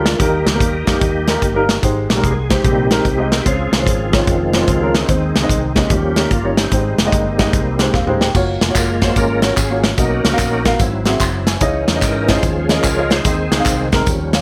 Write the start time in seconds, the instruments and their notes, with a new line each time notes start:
Already playing: fingered electric bass D2, upright piano G#3 D4 F4 A#4, tonewheel organ D4
0.03 tonewheel organ F4, snare, closed hi-hat
0.17 fingered electric bass D#2, upright piano D#3 G3 A#3 D#4, tonewheel organ D#4 G4 A#4, kick, closed hi-hat
0.22 upright piano A#4
0.45 fingered electric bass C#2, tonewheel organ D#3 G3 A#3, snare, closed hi-hat
0.54 upright piano G3 A#3 D#4 A#4
0.60 fingered electric bass D#2, kick, closed hi-hat
0.86 fingered electric bass F2, upright piano G3 A#3 D#4 A#4, tonewheel organ A#3 D#4 G4, kick, snare, closed hi-hat
1.01 fingered electric bass D#2, kick, closed hi-hat
1.27 upright piano G3 A#3 D#4 A#4, snare, closed hi-hat
1.42 fingered electric bass G1, kick, closed hi-hat
1.55 upright piano G3 A#3 D#4 A#4
1.69 snare, closed hi-hat
1.82 fingered electric bass G#1, upright piano G#2 G#3 D#4 G4 C5, kick, closed hi-hat
2.09 fingered electric bass A#1, tonewheel organ C3 G3 A#3, snare, closed hi-hat
2.15 upright piano G#3 D#4 G4 A#4
2.23 fingered electric bass C2, tonewheel organ G#4, kick, closed hi-hat
2.49 upright piano G#3 D#4 G4 C5, tonewheel organ G4, kick, snare, closed hi-hat
2.63 fingered electric bass A#1, tonewheel organ C3 G3 A#3 C4 D#4 G4, kick, closed hi-hat
2.90 upright piano G#3 D#4 G4 A#4, snare, closed hi-hat
3.05 fingered electric bass C2, kick, closed hi-hat
3.18 upright piano G#3 D#4 G4 D#5
3.32 tonewheel organ A#4, snare, closed hi-hat
3.41 upright piano G#3 C#4, tonewheel organ C4 F4 G4 G#4
3.46 fingered electric bass C#2, upright piano C#3 F4 C5, kick, closed hi-hat
3.72 fingered electric bass C2, tonewheel organ D#3 F3 C4, snare, closed hi-hat
3.79 upright piano G#3 C#4 F4 C5
3.86 fingered electric bass G#1, kick, closed hi-hat
4.12 upright piano G#3 C#4 F4 C#5, tonewheel organ G#3 C4 F4, kick, snare, closed hi-hat
4.27 fingered electric bass F1, kick, closed hi-hat
4.53 upright piano G#3 C#4 F4 C5, snare, closed hi-hat
4.68 fingered electric bass C#2, kick, closed hi-hat
4.81 upright piano G#3 C#4 F4 A#4
4.95 tonewheel organ G#3 C4 D#4, snare, closed hi-hat
5.08 fingered electric bass D#2, tonewheel organ D#3 G#3 C4, upright piano D#3 G#3 C4 D#4 C5, kick, closed hi-hat
5.35 fingered electric bass C#2, snare, closed hi-hat
5.41 upright piano G#3 C4 D#4 D#5
5.49 fingered electric bass C2, kick, closed hi-hat
5.75 upright piano G#3 C4 D#4 D#5, tonewheel organ A#3 C#4 G4, kick, snare, closed hi-hat
5.90 fingered electric bass D#2, upright piano D#3, tonewheel organ F3 G3 C#4, kick, closed hi-hat
6.16 upright piano G3 C#4 D#4 A#4, tonewheel organ G4, snare, closed hi-hat
6.31 fingered electric bass G1, tonewheel organ F4, kick, closed hi-hat
6.43 upright piano G3 C#4 D#4 C#5
6.57 tonewheel organ G3 C4 D#4, snare, closed hi-hat
6.71 fingered electric bass G#1, upright piano G#2 G#3 D#4 G4 C5, kick, closed hi-hat
6.98 fingered electric bass F1, tonewheel organ G3 A#3 C4, snare, closed hi-hat
7.05 upright piano G#3 D#4 G4 D#5
7.12 fingered electric bass G1, kick, closed hi-hat
7.38 upright piano G#3 D#4 G4 D#5, kick, snare, closed hi-hat
7.53 fingered electric bass C2, kick, closed hi-hat
7.79 upright piano G#3 D#4 G4 C5, snare, closed hi-hat
7.94 fingered electric bass D#1, upright piano F5, kick, snare
8.07 upright piano G#3 D#4 G4 C5, mid tom
8.21 upright piano G5, snare
8.34 fingered electric bass F#1, upright piano A#3 F4 F#4 C#5, kick, tambourine, crash
8.60 fingered electric bass F1, tonewheel organ G#3 A#3 F4, snare, closed hi-hat, tambourine
8.69 upright piano A#3 F4 F#4 C#5
8.75 fingered electric bass F#1, tonewheel organ A#4, kick, clap, closed hi-hat, tambourine
9.02 upright piano A#3 F4 F#4 C#5, tonewheel organ C5, kick, snare, closed hi-hat, tambourine
9.16 fingered electric bass G#1, tonewheel organ G#3 A#3 C#4 F4 A#4, kick, closed hi-hat, tambourine
9.42 upright piano A#3 F4 F#4 C#5, snare, closed hi-hat, tambourine
9.57 fingered electric bass G#1, tonewheel organ G#4, kick, clap, closed hi-hat, tambourine
9.70 upright piano A#3 F4 F#4 C#5
9.84 tonewheel organ F#4, snare, closed hi-hat, tambourine
9.97 fingered electric bass B1, upright piano B2 B3 F#4 A#4 D#5, tonewheel organ A#3 C#4 D#4 F#4 A#4, kick, closed hi-hat, tambourine
10.25 fingered electric bass C#2, snare, closed hi-hat, tambourine
10.31 upright piano B3 F#4 A#4 F5
10.39 fingered electric bass A#1, kick, clap, closed hi-hat, tambourine
10.65 upright piano B3 F#4 A#4 F5, kick, snare, closed hi-hat, tambourine
10.79 fingered electric bass G#1, upright piano G#2, tonewheel organ F#3 C4 E4, kick, closed hi-hat, tambourine
11.05 upright piano C4 F#4 G#4 E5, snare, closed hi-hat, tambourine
11.20 fingered electric bass F#1, upright piano C6, kick, clap, closed hi-hat, tambourine
11.47 upright piano G#5, snare, closed hi-hat, tambourine
11.60 fingered electric bass C#2, upright piano C#3 C#4 E4 G#4 D#5, tonewheel organ E3 C#4 D#4, kick, closed hi-hat, tambourine
11.88 fingered electric bass E2, snare, closed hi-hat, tambourine
11.94 upright piano C#4 E4 G#4 D#5
12.02 fingered electric bass G#2, tonewheel organ A#4, kick, clap, closed hi-hat, tambourine
12.27 upright piano C#4 E4 G#4 D#5, tonewheel organ F4 G#4 C5, kick, snare, closed hi-hat, tambourine
12.42 fingered electric bass D#2, upright piano D#3, tonewheel organ F3 G#3 C#4, kick, closed hi-hat, tambourine
12.69 upright piano C#4 F4 G#4 D#5, tonewheel organ C#4 F4 A#4, snare, closed hi-hat, tambourine
12.84 fingered electric bass C#2, kick, clap, closed hi-hat, tambourine
12.96 upright piano C#4 F4 G#4 D#5
13.10 tonewheel organ D#4 G#4 C5, snare, closed hi-hat, tambourine
13.24 fingered electric bass D#2, tonewheel organ D#3 G#3 C4, upright piano D#3 C4 D#4 G#4 D#5, kick, closed hi-hat, tambourine
13.51 fingered electric bass C#2, snare, closed hi-hat, tambourine
13.58 upright piano C4 D#4 G#4 F5
13.66 fingered electric bass C2, kick, clap, closed hi-hat, tambourine
13.92 upright piano C4 D#4 G#4 A#4, kick, snare, closed hi-hat, tambourine
14.06 fingered electric bass D#2, upright piano D#3, tonewheel organ F3 G3 C#4, kick, closed hi-hat, tambourine
14.33 upright piano C#5 F5, snare, closed hi-hat, tambourine